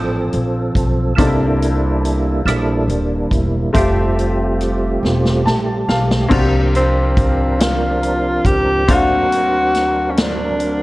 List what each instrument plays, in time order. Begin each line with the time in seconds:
Already playing: upright bass A1, grand piano A#2 A#3 C4 D4 F4 A4, tonewheel organ F3 C4 A4
0.33 upright bass A#1, closed hi-hat
0.75 upright bass B1, kick, closed hi-hat
1.15 upright bass C2, grand piano C3 A#3 C4 D4, tonewheel organ G3 A#3 D4 E4 A4, kick, closed hi-hat
1.20 grand piano D#4 A4
1.27 grand piano E4
1.62 closed hi-hat
2.05 closed hi-hat
2.45 upright bass A#1, tonewheel organ G3 A#3 D4 E4 A4, cross-stick, closed hi-hat
2.88 upright bass D#1, closed hi-hat
3.31 upright bass E1, tonewheel organ E4, kick, closed hi-hat
3.73 upright bass F1, tonewheel organ G3 A3 C4 G4, grand piano A3 C4 F4 G4 E5, kick, closed hi-hat
3.77 tonewheel organ F4
4.18 closed hi-hat
4.60 cross-stick, closed hi-hat
5.03 upright bass E1, snare
5.25 snare
5.45 upright bass A#1, grand piano A5, snare
5.88 upright bass B1, grand piano F5, snare
6.11 snare
6.29 upright bass C2, grand piano C3 A#3 C4 D4 F4 F#4, tonewheel organ C4 D4, kick, crash
6.33 tonewheel organ F3 A#4
6.39 grand piano G4
6.75 tenor saxophone C4, closed hi-hat
7.17 kick, closed hi-hat
7.60 tenor saxophone F4, snare, closed hi-hat
8.03 closed hi-hat
8.45 upright bass C#2, tenor saxophone G4, kick, closed hi-hat
8.88 upright bass D2, grand piano D3 A#3 C4 D4 F#4 F5, tonewheel organ F3 C4 D4 A#4, tenor saxophone F#4, kick, closed hi-hat
8.96 tonewheel organ F#3
9.32 closed hi-hat
9.74 snare, closed hi-hat
10.11 tenor saxophone C#4
10.17 tenor saxophone D4, snare, closed hi-hat
10.60 closed hi-hat